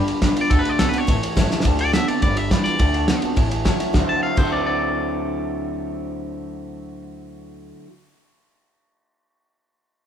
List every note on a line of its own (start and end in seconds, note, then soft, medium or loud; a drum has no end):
0.00 0.19 G2 medium
0.00 0.20 D3 loud
0.00 0.20 G3 loud
0.08 0.17 D5 medium
0.08 0.17 G5 medium
0.08 0.18 B5 loud
0.08 muted upright bass stroke medium
0.08 ride medium
0.21 0.35 C2 medium
0.21 0.48 G2 loud
0.21 0.48 D3 loud
0.21 0.36 G3 medium
0.21 0.36 B3 medium
0.21 0.35 F4 loud
0.21 0.31 D5 loud
0.21 0.32 G5 medium
0.21 0.32 B5 loud
0.21 kick medium
0.21 snare loud
0.21 ride medium
0.36 0.51 B3 soft
0.36 0.50 F4 medium
0.36 0.45 D5 medium
0.36 0.45 G5 medium
0.36 0.46 B5 medium
0.36 muted upright bass stroke soft
0.36 ride medium
0.41 0.50 D5 loud
0.50 0.65 D2 loud
0.50 0.77 D3 loud
0.50 0.76 D3 loud
0.50 0.77 A3 loud
0.50 0.60 A4 medium
0.50 0.59 D5 medium
0.50 0.60 F#5 loud
0.50 0.60 A5 loud
0.50 kick loud
0.50 ride medium
0.59 0.69 B4 medium
0.65 0.74 D5 medium
0.65 0.74 F#5 medium
0.65 0.74 C6 medium
0.65 muted upright bass stroke medium
0.65 ride medium
0.69 0.79 D5 loud
0.79 0.93 B1 medium
0.79 0.93 D3 medium
0.79 1.05 D3 medium
0.79 0.93 A3 medium
0.79 1.06 B3 loud
0.79 0.94 C4 medium
0.79 0.91 F#4 medium
0.79 0.88 A4 medium
0.79 0.88 D5 medium
0.79 0.88 F#5 medium
0.79 0.89 A5 medium
0.79 snare loud
0.79 ride medium
0.89 1.07 F#4 medium
0.89 0.98 B4 medium
0.93 1.08 C4 medium
0.93 1.03 D5 medium
0.93 1.03 F#5 medium
0.93 1.03 A5 medium
0.93 muted upright bass stroke medium
0.93 ride medium
0.98 1.63 C#5 loud
1.07 1.22 A1 loud
1.07 1.62 A2 loud
1.07 1.34 A2 medium
1.07 1.34 E3 loud
1.07 1.17 C#5 loud
1.07 1.17 E5 loud
1.07 1.17 A5 loud
1.07 kick loud
1.07 ride medium
1.22 1.31 C#5 medium
1.22 1.32 E5 medium
1.22 1.32 A5 medium
1.22 muted upright bass stroke medium
1.22 ride medium
1.36 1.50 G1 medium
1.36 1.62 A2 medium
1.36 1.50 E3 medium
1.36 1.63 E3 loud
1.36 1.50 G3 medium
1.36 1.50 C#4 loud
1.36 1.48 E4 medium
1.36 1.45 C#5 loud
1.36 1.46 E5 medium
1.36 1.46 A5 loud
1.36 kick medium
1.36 snare loud
1.36 ride loud
1.50 1.65 C#4 medium
1.50 1.64 E4 medium
1.50 1.60 C#5 medium
1.50 1.60 E5 medium
1.50 1.60 A5 loud
1.50 muted upright bass stroke medium
1.50 snare medium
1.60 1.92 D3 medium
1.60 snare loud
1.65 1.95 D2 medium
1.65 1.91 D3 medium
1.65 1.92 A3 loud
1.65 1.74 D5 loud
1.65 1.74 F#5 medium
1.65 1.75 A5 loud
1.65 kick loud
1.65 ride medium
1.79 1.88 D5 loud
1.79 1.93 D5 loud
1.79 1.88 F#5 loud
1.79 1.89 A5 loud
1.79 ride medium
1.93 2.07 D3 medium
1.93 2.20 D3 medium
1.93 2.08 A3 medium
1.93 2.20 B3 medium
1.93 2.08 C4 medium
1.93 2.06 F#4 medium
1.93 2.03 D5 medium
1.93 2.08 E5 medium
1.93 2.03 F#5 medium
1.93 2.03 A5 medium
1.93 snare loud
1.93 ride medium
2.07 2.23 C4 medium
2.07 2.22 F#4 medium
2.07 2.17 D5 medium
2.07 2.21 D5 medium
2.07 2.17 F#5 medium
2.07 2.18 A5 medium
2.07 muted upright bass stroke medium
2.07 ride medium
2.22 2.53 G1 medium
2.22 2.48 G2 medium
2.22 2.48 D3 loud
2.22 2.49 G3 loud
2.22 2.31 D5 medium
2.22 2.37 D5 medium
2.22 2.31 G5 medium
2.22 2.32 B5 medium
2.22 kick loud
2.22 ride medium
2.37 2.46 D5 medium
2.37 2.51 E5 medium
2.37 2.46 G5 medium
2.37 ride medium
2.50 2.77 G2 medium
2.50 2.77 E3 medium
2.50 2.65 G3 medium
2.50 2.65 B3 medium
2.50 2.63 F4 loud
2.50 2.60 D5 loud
2.50 2.63 D5 medium
2.50 2.60 G5 loud
2.50 2.60 B5 loud
2.50 kick medium
2.50 snare loud
2.50 ride medium
2.64 2.80 B3 medium
2.64 2.79 F4 medium
2.64 3.21 D5 loud
2.64 2.75 G5 medium
2.64 muted upright bass stroke medium
2.64 snare soft
2.64 ride medium
2.79 3.10 D2 loud
2.79 3.07 D3 medium
2.79 3.06 D3 medium
2.79 3.06 A3 loud
2.79 2.88 D5 medium
2.79 2.89 F#5 medium
2.79 2.89 A5 loud
2.79 kick loud
2.79 ride medium
2.94 3.03 D5 loud
2.94 3.03 F#5 loud
2.94 3.03 A5 loud
2.94 ride medium
3.08 3.22 D3 medium
3.08 3.34 D3 medium
3.08 3.23 A3 medium
3.08 3.34 B3 medium
3.08 3.23 C4 medium
3.08 3.21 F#4 loud
3.08 3.17 D5 loud
3.08 3.18 F#5 medium
3.08 3.18 A5 loud
3.08 snare loud
3.08 ride medium
3.22 3.38 C4 medium
3.22 3.37 F#4 medium
3.22 3.31 D5 medium
3.22 3.32 F#5 medium
3.22 3.32 A5 loud
3.22 muted upright bass stroke medium
3.22 ride medium
3.36 3.68 A1 loud
3.36 3.92 A2 loud
3.36 3.63 A2 medium
3.36 3.64 E3 loud
3.36 3.45 C#5 loud
3.36 3.46 E5 medium
3.36 3.46 A5 loud
3.36 kick loud
3.36 ride medium
3.51 3.60 C#5 medium
3.51 3.61 E5 medium
3.51 3.65 F#5 medium
3.51 3.61 A5 medium
3.51 ride medium
3.64 3.92 A2 medium
3.64 3.79 E3 medium
3.64 3.92 F#3 loud
3.64 3.79 G3 medium
3.64 3.80 C#4 medium
3.64 3.78 E4 medium
3.64 3.74 C#5 loud
3.64 3.74 E5 loud
3.64 3.73 G5 medium
3.64 3.71 A5 loud
3.64 kick medium
3.64 snare loud
3.64 ride medium
3.73 3.80 A5 medium
3.79 3.95 C#4 soft
3.79 3.94 E4 medium
3.79 3.89 C#5 medium
3.79 3.89 E5 medium
3.79 3.89 A5 medium
3.79 muted upright bass stroke medium
3.79 snare soft
3.79 ride medium
3.91 4.03 D2 loud
3.91 4.36 D3 medium
3.91 4.36 D3 loud
3.91 4.37 F#3 loud
3.91 4.37 A3 medium
3.91 4.38 C4 medium
3.91 4.01 D5 medium
3.91 4.03 F#5 medium
3.91 kick loud
3.91 snare loud
3.96 4.39 C4 loud
3.96 4.40 E4 loud
3.96 4.39 F#4 loud
3.96 4.04 A5 medium
4.09 4.22 A5 loud
4.23 4.37 F5 medium
4.35 7.71 D2 medium
4.35 7.86 D3 medium
4.35 7.87 D3 medium
4.35 7.88 F#3 medium
4.35 7.88 A3 medium
4.35 7.88 C4 medium
4.35 4.52 C5 medium
4.35 7.69 D5 medium
4.35 7.71 F#5 medium
4.35 kick loud
4.35 crash medium
4.39 7.89 C4 loud
4.39 7.91 E4 loud
4.39 7.89 F#4 medium
4.39 7.72 A5 loud
4.53 4.65 D5 medium
4.67 7.71 D5 loud